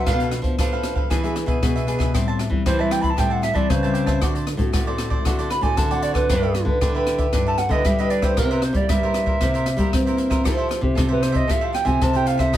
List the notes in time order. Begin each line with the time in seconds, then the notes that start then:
0.05 B2 F3 A3 D4 A4 B4 F5, kick, cross-stick, closed hi-hat
0.20 A4 B4 F5, closed hi-hat
0.31 F3 A3 D4, muted cavaquinho stroke, cross-stick, closed hi-hat
0.42 F3, kick, closed hi-hat
0.57 B2 F3 D4 A4 B4 F5, kick, cross-stick, closed hi-hat
0.71 F3 A3 D4 A4 B4 F5
0.83 cross-stick, closed hi-hat
0.95 A4 B4 F5, kick
1.10 E3 B3 D4 G#4 B4 E5, kick, cross-stick, closed hi-hat
1.23 B3 D4 G#4 B4 E5, closed hi-hat
1.36 muted cavaquinho stroke, cross-stick, closed hi-hat
1.46 B2 G#4 B4 E5, kick, closed hi-hat
1.61 B2 B3 D4 G#4, kick, cross-stick, closed hi-hat
1.76 G#4 B4 E5, closed hi-hat
1.87 B3 D4 G#4 B4 E5, closed hi-hat
1.99 G#4 B4 E5, kick, cross-stick, closed hi-hat
2.14 A2 G3 C4 E4 G4 C5 E5 A5, kick, cross-stick, closed hi-hat
2.28 C5 E5 A5
2.39 muted cavaquinho stroke, cross-stick, closed hi-hat
2.50 E3 G3 C4 E4, kick
2.66 E3 G4 C5 E5 A5, kick, cross-stick, closed hi-hat
2.79 G3 C4 E4 C5 E5 A5
2.91 G5, cross-stick, closed hi-hat
3.01 C5 E5 A5 B5, kick, closed hi-hat
3.10 A5
3.17 A2 G3 C4 E4 G4 C5 E5 G5 A5, kick, cross-stick, closed hi-hat
3.30 C5 E5 F#5 A5
3.42 E5, muted cavaquinho stroke, cross-stick, closed hi-hat
3.54 E3 G3 C4 E4 C5 D5 E5 A5, kick, closed hi-hat
3.69 C#3 E3 C5, kick, cross-stick, closed hi-hat
3.83 G3 C4 E4 C5 E5 A5, closed hi-hat
3.94 G4 C5 E5 A5, closed hi-hat
4.06 C5 E5 A5, kick, cross-stick, closed hi-hat
4.21 D3 A3 C4 F#4 A4 C5 D5, kick, cross-stick, closed hi-hat
4.35 A4 C5 D5, closed hi-hat
4.46 muted cavaquinho stroke, cross-stick, closed hi-hat
4.57 A2 A3 C4 F#4, kick, closed hi-hat
4.72 A2 F#4 A4 C5 D5, kick, cross-stick, closed hi-hat
4.87 A3 C4 F#4 A4 C5 D5
4.98 cross-stick, closed hi-hat
5.10 A4 C5 D5, kick
5.25 D3 A3 C4 F#4 A4 C5 D5, kick, cross-stick, closed hi-hat
5.39 A4 C5 D5, closed hi-hat
5.50 B5, muted cavaquinho stroke, cross-stick, closed hi-hat
5.61 A2 A3 C4 F#4 A4 C5 D5 G#5, kick, closed hi-hat
5.77 A2 D3 A5, kick, cross-stick, closed hi-hat
5.91 A3 C4 F#4 A4 C5 D5 F#5, closed hi-hat
6.02 F#4 A4 C5 D5, closed hi-hat
6.14 A4 B4 C5 D5, kick, cross-stick, closed hi-hat
6.29 G2 G3 D4 E4 G4 B4 E5, kick, cross-stick, closed hi-hat
6.42 G4 B4 E5
6.54 muted cavaquinho stroke, cross-stick, closed hi-hat
6.65 D3 D4 E4 B4, kick
6.81 D3 D4 G4 B4 E5, kick, cross-stick, closed hi-hat
6.94 D4 E4 G4 B4 E5
7.07 cross-stick, closed hi-hat
7.18 G4 B4 E5, kick, closed hi-hat
7.32 G2 G3 D4 E4 G4 B4 E5, kick, cross-stick, closed hi-hat
7.46 G4 B4 E5 A5
7.58 F#5, muted cavaquinho stroke, cross-stick, closed hi-hat
7.69 D3 D4 E4 G4 B4 D#5 E5, kick, closed hi-hat
7.85 D3 G3 E5, kick, cross-stick, closed hi-hat
7.99 D4 E4 G4 B4 D#5 E5, closed hi-hat
8.10 D4 G4 B4 D5 E5, closed hi-hat
8.22 G4 B4 C5 E5, kick, cross-stick, closed hi-hat
8.37 C3 A#3 E4 G4 A#4 C5 E5, kick, cross-stick, closed hi-hat
8.51 A#4 B4 C5 E5, closed hi-hat
8.62 C5, muted cavaquinho stroke, cross-stick, closed hi-hat
8.73 G3 A#3 E4 G4 D5, kick, closed hi-hat
8.89 G2 G3 E4 A#4 C5 E5, kick, cross-stick, closed hi-hat
9.03 A#3 E4 G4 A#4 C5 E5
9.14 cross-stick, closed hi-hat
9.26 A#4 C5 E5, kick
9.41 C3 A#3 E4 G4 A#4 C5 E5, kick, cross-stick, closed hi-hat
9.54 A#4 C5 E5, closed hi-hat
9.66 muted cavaquinho stroke, cross-stick, closed hi-hat
9.77 G3 A#3 E4 G4 A#4 C5 E5, kick, closed hi-hat
9.93 G2 C4, kick, cross-stick, closed hi-hat
10.06 A#3 E4 G4 A#4 C5 E5, closed hi-hat
10.17 E4 A#4 C5 E5, closed hi-hat
10.30 A#4 C5 E5, kick, cross-stick, closed hi-hat
10.44 F3 A3 E4 F4 G4 A4 C5 E5, kick, cross-stick, closed hi-hat
10.57 A4 C5 E5
10.69 muted cavaquinho stroke, cross-stick, closed hi-hat
10.81 C3 A3 E4 G4, kick
10.95 C3 F4 A4 C5 E5, kick, cross-stick, closed hi-hat
11.08 A3 E4 G4 A4 B4 C5 E5
11.22 C5, cross-stick, closed hi-hat
11.32 A4 C5 D#5 E5, kick, closed hi-hat
11.48 F3 A3 E4 F4 G4 A4 C5 E5, kick, cross-stick, closed hi-hat
11.61 A4 C5 E5 F5
11.73 G5, muted cavaquinho stroke, cross-stick, closed hi-hat
11.85 C3 A3 E4 G4 A4 C5 E5 G#5, kick, closed hi-hat
12.01 C3 A5, kick, cross-stick, closed hi-hat
12.13 A3 E4 G4 A4 C5 E5 G5, closed hi-hat
12.26 F4 A4 C5 E5 F5, closed hi-hat
12.37 A4 C5 E5, kick, cross-stick, closed hi-hat
12.53 B2 A3 D#4 A4 B4, kick, cross-stick, closed hi-hat